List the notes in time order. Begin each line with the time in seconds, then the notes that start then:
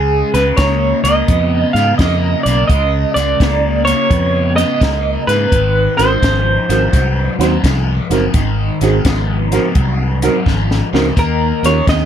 Already playing: C#2 C#3 G#3 G#4
0.34 C#2 C#3 G#3 B4, snare, closed hi-hat
0.57 C#2 C#3 A#3 C#5, kick, snare, closed hi-hat
1.04 C#2 C#3 A#3 D#5, snare, closed hi-hat
1.28 F2 C#3 B3, kick, closed hi-hat
1.73 G#2 C#3 B3 F5, closed hi-hat
1.77 snare
1.98 F2 C#3 A#3 D#5, kick, snare, closed hi-hat
2.43 B1 C#3 A#3 D5, snare, closed hi-hat
2.68 C#2 C#3 G#3 D#5, kick, closed hi-hat
3.14 C#2 C#3 G#3 D5, snare, closed hi-hat
3.40 C#2 C#3 A#3, kick, snare, closed hi-hat
3.85 C#3 A#3 C#5, snare, closed hi-hat
4.10 F2 C#3 B3, kick, closed hi-hat
4.56 C#3 B3 D#5, snare, closed hi-hat
4.80 C#2 C#3 A#3, kick, snare, closed hi-hat
5.27 G#2 C#3 A#3 B4, snare, closed hi-hat
5.51 G#1 G#2 D#3, kick, closed hi-hat
5.97 G#1 G#2 D#3 C4 D#4 F#4 A#4 C5, snare, closed hi-hat
6.22 G#1 G#2 F3, kick, snare, closed hi-hat
6.69 G#1 G#2 F3 C4 D#4 F#4 A#4, snare, closed hi-hat
6.93 C2 G#2 F#3, kick, snare, closed hi-hat
7.39 D#2 G#2 F#3 C4 D#4 F#4 C5, snare, closed hi-hat
7.63 C2 G#2 F3, kick, snare, closed hi-hat
8.10 F#1 G#2 F3 C4 D#4 F#4 A#4, snare, closed hi-hat
8.34 G#1 G#2 D#3, kick, snare, closed hi-hat
8.81 G#1 G#2 D#3 C4 D#4 F#4 G#4, snare, closed hi-hat
9.05 G#1 G#2 F3, kick, snare, closed hi-hat
9.51 G#2 F3 C4 D#4 F#4 A#4, snare, closed hi-hat
9.75 C2 G#2 F#3, kick, closed hi-hat
10.22 G#2 F#3 C4 D#4 F#4 A#4, snare, closed hi-hat
10.46 G#1 G#2 F3, kick, snare
10.71 snare
10.93 C#2 G#2 F3 C4 D#4 F#4 A#4, snare
11.16 D#2 D#3 A#3 A#4, kick, snare, closed hi-hat
11.63 D#2 D#3 A#3 C#4 F4 G4 A#4 C#5, snare, closed hi-hat
11.87 D#2 D#3 C4 D#5, kick, snare, closed hi-hat